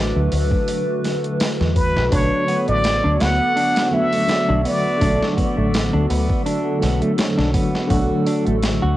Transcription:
0.00 0.11 A1 medium
0.00 2.08 D3 medium
0.00 2.08 D3 loud
0.00 2.11 F#3 medium
0.00 2.08 A3 medium
0.00 2.13 A3 medium
0.00 2.14 D4 loud
0.00 2.14 E4 medium
0.00 2.08 F#4 medium
0.00 2.10 B4 medium
0.16 0.30 D2 medium
0.32 0.49 D2 medium
0.32 open hi-hat medium
0.51 kick medium
0.68 open hi-hat medium
1.04 snare soft
1.04 open hi-hat medium
1.24 closed hi-hat soft
1.40 snare loud
1.40 open hi-hat medium
1.61 1.98 E2 medium
1.61 snare medium
1.76 2.14 B4 medium
1.76 kick medium
1.76 open hi-hat medium
1.96 2.11 B1 medium
1.96 snare soft
2.08 3.87 D3 loud
2.08 8.97 D3 medium
2.08 3.88 F#3 medium
2.08 7.86 B3 medium
2.08 2.47 D4 loud
2.08 7.86 F#4 medium
2.08 8.97 A4 medium
2.08 kick loud
2.08 open hi-hat medium
2.12 2.30 B1 loud
2.12 3.90 A3 medium
2.12 3.91 B4 loud
2.12 2.68 C#5 loud
2.48 2.66 B3 loud
2.48 open hi-hat medium
2.68 3.00 A1 medium
2.68 2.77 A3 medium
2.68 3.23 D5 loud
2.68 closed hi-hat soft
2.84 snare loud
2.84 open hi-hat medium
3.04 3.19 D2 medium
3.04 3.19 D4 loud
3.20 3.39 D2 medium
3.20 3.55 B3 medium
3.20 3.95 F#5 loud
3.20 snare loud
3.20 open hi-hat medium
3.56 3.91 D4 loud
3.56 open hi-hat medium
3.76 snare loud
3.76 open hi-hat medium
3.91 4.24 D3 medium
3.91 4.25 F#3 medium
3.91 4.25 A3 medium
3.91 4.11 B3 loud
3.91 4.26 D4 loud
3.91 4.69 E5 loud
4.13 4.22 A3 medium
4.13 open hi-hat medium
4.27 4.96 D3 medium
4.27 4.97 F#3 medium
4.27 4.98 A3 medium
4.27 4.98 D5 medium
4.27 snare loud
4.27 open hi-hat medium
4.49 4.64 B1 loud
4.49 4.64 D4 loud
4.65 5.00 B3 medium
4.65 5.38 D5 medium
4.65 open hi-hat medium
4.98 6.76 D3 loud
4.98 6.78 F#3 medium
4.98 5.36 D4 loud
4.98 kick loud
4.98 open hi-hat medium
5.02 5.19 B1 loud
5.02 6.79 A3 medium
5.02 6.80 D5 loud
5.23 snare medium
5.37 5.55 B3 loud
5.37 kick medium
5.37 open hi-hat medium
5.57 5.89 A1 medium
5.57 5.67 A3 medium
5.74 snare loud
5.74 open hi-hat medium
5.93 6.08 D2 medium
5.93 6.08 D4 loud
6.10 6.28 D2 medium
6.10 6.44 B3 medium
6.10 open hi-hat medium
6.30 kick loud
6.46 6.80 D4 loud
6.46 open hi-hat medium
6.80 7.00 B1 medium
6.80 7.13 D3 medium
6.80 7.14 F#3 medium
6.80 7.14 A3 medium
6.80 7.00 B3 loud
6.80 7.15 D4 loud
6.80 snare medium
6.80 open hi-hat medium
7.02 7.11 A3 medium
7.02 closed hi-hat soft
7.16 7.86 D3 medium
7.16 7.86 F#3 medium
7.16 7.87 A3 medium
7.16 7.88 C#5 medium
7.16 snare loud
7.16 open hi-hat medium
7.38 7.53 B1 medium
7.38 7.53 D4 loud
7.38 snare medium
7.54 7.89 B3 medium
7.54 kick medium
7.54 open hi-hat medium
7.75 snare medium
7.87 8.97 D3 loud
7.87 8.97 F#3 medium
7.87 8.25 F#4 loud
7.87 8.97 F#4 medium
7.87 kick loud
7.87 open hi-hat medium
7.91 8.08 B1 loud
7.91 8.97 A3 medium
7.91 8.97 D4 loud
8.27 8.45 D4 loud
8.27 open hi-hat medium
8.46 8.78 A1 medium
8.46 8.56 A3 medium
8.46 closed hi-hat soft
8.63 snare loud
8.63 open hi-hat medium
8.82 8.97 D2 medium
8.82 8.97 F#4 loud

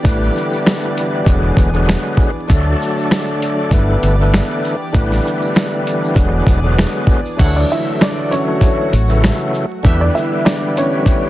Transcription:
0.00 1.23 D3 loud
0.00 1.27 E3 medium
0.00 2.46 D4 medium
0.00 1.25 G4 medium
0.00 2.46 D5 medium
0.05 0.28 A1 loud
0.05 2.47 E3 medium
0.05 1.27 G3 medium
0.05 1.26 A3 medium
0.05 1.25 B3 loud
0.05 kick loud
0.05 closed hi-hat medium
0.05 shaker medium
0.36 shaker soft
0.38 shaker medium
0.53 shaker soft
0.66 snare loud
0.66 closed hi-hat medium
0.66 shaker medium
0.97 closed hi-hat soft
0.97 shaker soft
1.24 1.50 E1 loud
1.24 1.69 D3 medium
1.24 1.70 F#3 medium
1.24 1.70 G#3 medium
1.24 1.71 B3 loud
1.24 2.48 B3 medium
1.24 2.48 G#4 medium
1.24 kick medium
1.24 closed hi-hat medium
1.24 shaker medium
1.57 1.94 E1 loud
1.57 kick loud
1.57 closed hi-hat medium
1.57 shaker medium
1.74 2.30 D3 medium
1.74 2.31 F#3 medium
1.74 2.31 G#3 medium
1.74 2.31 B3 loud
1.89 snare loud
1.89 snare medium
1.89 closed hi-hat medium
1.89 shaker medium
2.17 kick loud
2.17 shaker medium
2.17 shaker soft
2.48 2.73 D2 loud
2.48 3.70 D3 medium
2.48 3.72 F#3 medium
2.48 3.71 F#3 medium
2.48 3.70 A3 medium
2.48 3.71 A3 medium
2.48 3.71 D4 medium
2.48 3.72 D4 loud
2.48 3.70 A4 medium
2.48 6.13 D5 medium
2.48 kick loud
2.48 closed hi-hat loud
2.48 shaker medium
2.80 shaker soft
2.82 shaker medium
2.97 shaker soft
3.11 snare loud
3.11 closed hi-hat medium
3.11 shaker medium
3.42 closed hi-hat medium
3.42 shaker soft
3.71 3.95 G1 loud
3.71 4.15 D3 loud
3.71 4.15 E3 medium
3.71 7.36 E3 medium
3.71 4.16 A3 medium
3.71 4.93 B3 medium
3.71 4.16 B3 loud
3.71 7.36 D4 medium
3.71 6.15 G4 medium
3.71 kick medium
3.71 closed hi-hat medium
3.71 shaker medium
4.03 4.40 G1 loud
4.03 closed hi-hat medium
4.03 shaker medium
4.20 4.75 D3 loud
4.20 4.76 E3 medium
4.20 4.76 A3 medium
4.20 4.77 B3 loud
4.33 snare loud
4.33 snare medium
4.33 closed hi-hat medium
4.33 shaker medium
4.64 shaker medium
4.64 shaker soft
4.93 5.18 A1 loud
4.93 6.12 D3 loud
4.93 6.17 E3 medium
4.93 6.17 G3 medium
4.93 6.15 A3 medium
4.93 6.15 B3 loud
4.93 kick loud
4.93 closed hi-hat medium
4.93 shaker medium
5.12 snare soft
5.25 shaker soft
5.27 shaker medium
5.42 shaker soft
5.55 snare loud
5.55 closed hi-hat medium
5.55 shaker medium
5.87 closed hi-hat medium
5.87 shaker soft
5.87 shaker medium
6.04 shaker soft
6.14 6.40 E1 loud
6.14 6.59 D3 medium
6.14 6.59 F#3 medium
6.14 6.60 G#3 medium
6.14 6.60 B3 loud
6.14 7.38 B3 medium
6.14 7.38 G#4 medium
6.14 7.38 D5 medium
6.14 kick medium
6.14 closed hi-hat medium
6.14 shaker medium
6.47 6.84 E1 loud
6.47 kick loud
6.47 closed hi-hat medium
6.47 shaker medium
6.63 7.20 D3 loud
6.63 7.20 F#3 medium
6.63 7.21 G#3 medium
6.63 7.21 B3 loud
6.78 snare loud
6.78 closed hi-hat medium
6.78 shaker medium
7.07 kick loud
7.07 shaker medium
7.07 shaker soft
7.25 shaker medium
7.37 7.63 D2 loud
7.37 8.93 D3 medium
7.37 8.94 E3 medium
7.37 8.94 F#3 medium
7.37 9.82 F#3 medium
7.37 8.95 A3 loud
7.37 9.82 A3 medium
7.37 7.59 D4 loud
7.37 9.82 F#4 loud
7.37 7.59 C#5 medium
7.37 7.59 F#5 loud
7.37 kick loud
7.37 closed hi-hat loud
7.37 crash loud
7.37 shaker medium
7.56 7.69 D4 medium
7.56 7.69 D5 medium
7.70 7.99 E5 medium
7.70 shaker soft
7.72 7.99 E4 medium
7.72 shaker medium
8.00 8.30 D4 medium
8.00 8.29 D5 medium
8.00 snare loud
8.00 closed hi-hat medium
8.00 shaker medium
8.31 9.37 C#4 medium
8.31 9.36 C#5 medium
8.31 closed hi-hat medium
8.31 shaker medium
8.31 shaker soft
8.61 kick loud
8.61 closed hi-hat medium
8.61 shaker medium
8.93 9.29 A1 medium
8.93 closed hi-hat medium
8.93 shaker medium
9.08 9.65 C#3 medium
9.08 9.65 E3 medium
9.08 9.66 F#3 medium
9.08 9.66 A3 loud
9.08 shaker medium
9.23 snare loud
9.23 closed hi-hat medium
9.23 shaker medium
9.54 shaker soft
9.54 shaker medium
9.83 10.08 E2 loud
9.83 11.29 D3 loud
9.83 11.29 E3 medium
9.83 11.29 G3 medium
9.83 11.29 A3 medium
9.83 10.04 A3 medium
9.83 11.29 B3 loud
9.83 11.29 E4 medium
9.83 11.29 G4 medium
9.83 10.04 G4 loud
9.83 10.04 E5 loud
9.83 kick loud
9.83 closed hi-hat medium
9.83 shaker medium
10.01 10.14 D4 medium
10.01 10.13 D5 medium
10.15 10.43 E4 medium
10.15 10.43 E5 medium
10.15 shaker soft
10.17 shaker medium
10.45 10.73 D4 medium
10.45 10.73 D5 medium
10.45 snare loud
10.45 closed hi-hat medium
10.45 shaker medium
10.77 11.29 C#4 medium
10.77 11.29 C#5 medium
10.77 closed hi-hat medium
10.77 shaker soft
10.77 shaker medium
11.06 kick medium
11.06 closed hi-hat medium
11.06 shaker medium

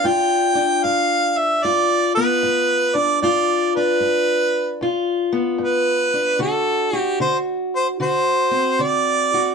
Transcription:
0.00 0.78 G2 medium
0.00 0.55 D4 medium
0.05 1.64 F4 medium
0.05 0.85 G5 loud
0.55 2.94 D4 medium
0.83 1.58 G2 medium
0.83 1.39 F5 loud
1.37 1.65 E5 medium
1.63 2.38 G2 medium
1.63 3.20 F4 medium
1.63 2.15 D5 loud
2.15 3.20 B3 medium
2.15 2.98 B4 loud
2.43 3.17 G2 medium
2.95 3.76 D4 medium
2.95 3.21 D5 medium
3.22 3.97 G2 medium
3.22 4.81 F4 medium
3.22 3.71 D5 medium
3.76 6.13 D4 medium
3.76 4.78 B4 medium
4.00 4.76 G2 medium
4.81 5.56 G2 medium
4.81 6.39 F4 medium
5.33 6.37 B3 medium
5.58 6.35 G2 medium
5.63 6.38 B4 medium
6.14 8.51 D4 medium
6.39 7.15 D3 medium
6.39 6.93 F#4 medium
6.39 6.97 A4 medium
6.93 8.00 F#4 medium
6.93 7.18 G4 medium
7.20 7.95 D3 medium
7.20 7.37 C5 medium
7.76 7.87 C5 medium
8.00 8.75 D3 medium
8.00 9.33 F#4 medium
8.00 8.84 C5 medium
8.51 9.55 C4 medium
8.79 9.54 D3 medium
8.79 9.55 D5 loud
9.34 9.55 F#4 medium

